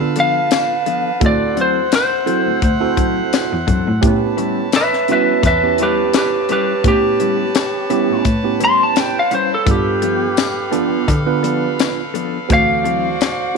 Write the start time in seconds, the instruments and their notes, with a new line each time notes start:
Already playing: cello D3, horn section B4 F5 A5
0.00 tine electric piano B3 D4 F4 A4
0.16 clean electric guitar F3 B3 D4 A4, closed hi-hat
0.20 lead electric guitar F5
0.51 snare, closed hi-hat, tambourine
0.86 clean electric guitar F3 B3 D4 A4, closed hi-hat
1.20 cello D2, tine electric piano C4 E4 F#4 A4, horn section C5 E5 F#5, kick, closed hi-hat
1.26 lead electric guitar D5
1.56 clean electric guitar F#3 C4 E4 A4, closed hi-hat
1.61 lead electric guitar C5
1.92 lead electric guitar C5, snare, closed hi-hat, tambourine
2.26 clean electric guitar F#3 C4 E4 A4, tine electric piano C4 E4 F#4 A4, closed hi-hat
2.46 cello D2
2.62 cello D2, kick, closed hi-hat
2.80 tine electric piano C4 E4 F#4 A4
2.97 clean electric guitar F#3 C4 E4 A4, kick, closed hi-hat
3.33 snare, closed hi-hat, tambourine
3.52 cello E2
3.67 cello F#2, clean electric guitar F#3 C4 E4 A4, kick, closed hi-hat
3.87 cello A2
4.01 cello A2, tine electric piano B3 C#4 E4 G4, horn section B4 C#5 A5, kick, closed hi-hat
4.37 clean electric guitar G3 C#4 E4 B4, closed hi-hat
4.72 lead electric guitar B4, snare, closed hi-hat, tambourine
4.77 lead electric guitar E5
4.93 snare
5.08 clean electric guitar G3 C#4 E4 B4, tine electric piano B3 C#4 E4 F#4, closed hi-hat
5.12 lead electric guitar B4 E5
5.43 cello E2, lead electric guitar B4, kick, closed hi-hat
5.47 lead electric guitar E5
5.63 tine electric piano B3 C#4 E4 G4
5.78 clean electric guitar G3 C#4 E4 B4, closed hi-hat
5.83 lead electric guitar G4 B4
6.13 lead electric guitar G4, snare, closed hi-hat, tambourine
6.19 lead electric guitar B4
6.49 clean electric guitar G3 C#4 E4 B4, lead electric guitar G4 B4, closed hi-hat
6.84 cello A2, tine electric piano B3 C#4 E4 G4, lead electric guitar G4, kick, closed hi-hat
7.20 clean electric guitar G3 C#4 E4 B4, closed hi-hat
7.55 snare, closed hi-hat, tambourine
7.90 clean electric guitar G3 C#4 E4 B4, tine electric piano B3 C#4 E4 G4, closed hi-hat
8.10 cello A2
8.25 cello A2, kick, closed hi-hat
8.44 tine electric piano B3 C#4 E4 G4
8.60 clean electric guitar G3 C#4 E4 B4, closed hi-hat
8.65 lead electric guitar C6
8.83 lead electric guitar A5
8.96 snare, closed hi-hat, tambourine
9.00 lead electric guitar G5
9.19 lead electric guitar F5
9.31 clean electric guitar G3 C#4 E4 B4, lead electric guitar C5, closed hi-hat
9.54 lead electric guitar A4
9.66 cello G2, tine electric piano B3 D4 F4 A4, horn section A4 F5, kick, closed hi-hat
9.71 lead electric guitar G4
10.02 clean electric guitar F3 B3 D4 A4, closed hi-hat
10.37 snare, closed hi-hat, tambourine
10.71 clean electric guitar F3 B3 D4 A4, tine electric piano B3 D4 F4 A4, closed hi-hat
11.08 cello D3, kick, closed hi-hat
11.26 tine electric piano B3 D4 F4 B4
11.43 clean electric guitar F3 B3 D4 A4, closed hi-hat
11.79 snare, closed hi-hat, tambourine
12.14 clean electric guitar F3 B3 D4 A4, closed hi-hat
12.49 cello D2, tine electric piano E3 C4 F#4 A4, horn section F#4 C5 D5, kick, closed hi-hat
12.53 lead electric guitar F5
12.84 clean electric guitar F#3 C4 E4 A4, closed hi-hat
13.21 snare, closed hi-hat, tambourine